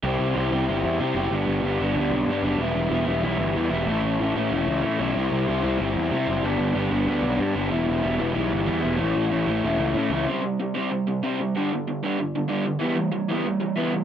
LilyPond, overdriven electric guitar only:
\new Staff \with { instrumentName = "Overdriven electric guitar" } { \clef bass \time 4/4 \key c \lydian \tempo 4 = 188 <c g c' e' g'>4 <c g c' e' g'>8 <c g c' e' g'>8 <c g c' e' g'>4 <c g c' e' g'>8 <c g c' e' g'>8 | <g, d g b d'>4 <g, d g b d'>8 <g, d g b d'>8 <g, d g b d'>4 <g, d g b d'>8 <g, d g b d'>8 | <e g b e'>4 <e g b e'>8 <e g b e'>8 <e g b e'>4 <e g b e'>8 <e g b e'>8 | <a, e a cis' e'>4 <a, e a cis' e'>8 <a, e a cis' e'>8 <a, e a cis' e'>4 <a, e a cis' e'>8 <a, e a cis' e'>8 |
<c g c' e'>4 <c g c' e'>8 <c g c' e'>8 <c g c' e'>4 <c g c' e'>8 <c g c' e'>8 | <g, d g b d'>4 <g, d g b d'>8 <g, d g b d'>8 <g, d g b d'>4 <g, d g b d'>8 <g, d g b d'>8 | <e g b e'>4 <e g b e'>8 <e g b e'>8 <e g b e'>4 <e g b e'>8 <e g b e'>8 | <a, e a cis' e'>4 <a, e a cis' e'>8 <a, e a cis' e'>8 <a, e a cis' e'>4 <a, e a cis' e'>8 <a, e a cis' e'>8 |
<c g c'>8 <c g>8 <c g>8 <c g c'>8 <c g>8 <c g>8 <c g c'>8 <c g>8 | <g, d g>8 <g, d>8 <g, d>8 <g, d g>8 <g, d>8 <g, d>8 <g, d g>8 <g, d>8 | <e g b>8 <e g>8 <e g>8 <e g b>8 <e g>8 <e g>8 <e g b>8 <e g>8 | }